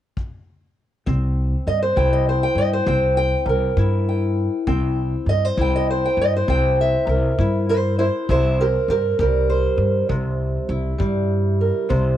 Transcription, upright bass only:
1.07 1.53 C2 medium
1.67 1.90 G2 medium
1.97 2.43 C2 medium
2.55 2.79 G2 medium
2.86 3.33 C2 medium
3.46 3.69 C2 medium
3.77 4.46 G2 medium
4.67 5.13 C2 medium
5.26 5.50 G2 medium
5.57 6.04 C2 medium
6.17 6.40 G2 medium
6.48 6.94 C2 loud
7.07 7.30 C2 medium
7.38 8.08 G2 medium
8.29 8.75 C2 medium
8.88 9.12 G2 medium
9.19 9.65 C2 medium
9.77 10.01 G2 medium
10.09 10.56 C2 medium
10.69 10.92 C2 medium
11.00 11.69 G2 medium
11.90 12.17 C2 loud

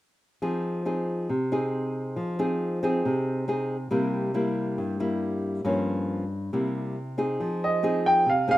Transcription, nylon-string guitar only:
0.42 1.27 F3 medium
0.42 0.82 C4 soft
0.42 0.83 D#4 medium
0.42 0.82 G#4 medium
0.85 1.29 C4 soft
0.85 1.29 D#4 medium
0.85 1.29 G#4 medium
1.29 2.15 C3 medium
1.52 2.35 C4 medium
1.52 2.35 D#4 medium
1.52 2.36 G#4 medium
2.16 3.02 F3 medium
2.39 2.79 C4 medium
2.39 2.79 D#4 medium
2.39 2.79 G#4 medium
2.83 3.44 C4 medium
2.83 3.45 D#4 medium
2.83 3.45 G#4 medium
3.05 3.90 C3 medium
3.48 3.76 C4 medium
3.48 3.76 D#4 medium
3.48 3.76 G#4 medium
3.91 4.76 C3 medium
3.91 4.31 G3 medium
3.91 4.31 A#3 medium
3.91 4.31 E4 medium
4.34 4.96 G3 medium
4.34 4.96 A#3 medium
4.34 4.97 E4 medium
4.78 5.63 G2 medium
5.00 5.62 G3 soft
5.00 5.62 A#3 medium
5.00 5.62 E4 medium
5.64 6.50 G2 medium
5.64 6.23 F3 medium
5.64 6.24 A#3 medium
5.64 6.24 C#4 medium
6.53 7.37 C3 medium
6.53 6.96 G3 soft
6.53 6.96 A#3 soft
6.53 6.96 E4 medium
7.18 7.79 C4 soft
7.18 7.79 D#4 medium
7.18 7.80 G#4 medium
7.40 8.24 F3 medium
7.83 8.26 C4 medium
7.83 8.26 D#4 medium
7.83 8.26 G#4 medium
8.26 8.58 C3 medium
8.48 8.58 C4 medium
8.48 8.58 D#4 medium
8.48 8.58 G#4 medium

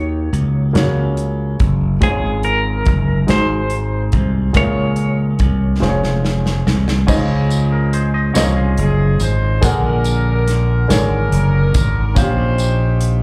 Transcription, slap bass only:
0.00 0.29 D#2 medium
0.33 0.71 C#2 medium
0.75 1.55 C#2 medium
1.60 1.99 F#1 medium
2.02 2.82 G#1 medium
2.87 3.25 F#1 medium
3.28 4.09 G#1 medium
4.13 4.52 C2 medium
4.55 5.36 C#2 medium
5.40 5.79 C2 medium
5.82 6.62 F1 medium
6.66 7.05 C2 medium
7.08 8.31 C#2 medium
8.36 8.75 C2 medium
8.78 9.17 F#1 medium
9.20 9.59 G#1 medium
9.63 10.85 A#1 loud
10.90 11.29 G#1 medium
11.32 11.71 F#1 medium
11.75 12.13 G#1 medium
12.16 13.23 A#1 loud

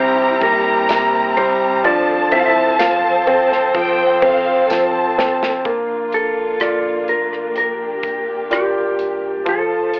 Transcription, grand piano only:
0.00 0.89 C3 medium
0.00 0.41 G3 medium
0.41 1.35 G3 medium
0.89 1.81 C3 soft
1.37 1.83 G3 medium
1.84 2.78 F3 medium
2.32 3.26 C4 soft
2.79 3.73 F3 soft
3.27 4.21 C4 medium
3.74 4.69 F3 medium
4.22 5.17 C4 medium
4.70 5.62 F3 medium
5.18 5.64 C4 soft
5.66 9.42 A#3 soft
6.60 7.53 F4 soft
6.60 7.53 D5 soft
8.50 9.43 F4 soft
8.50 9.43 A#4 soft
8.50 9.43 D5 soft
9.46 10.00 F3 medium

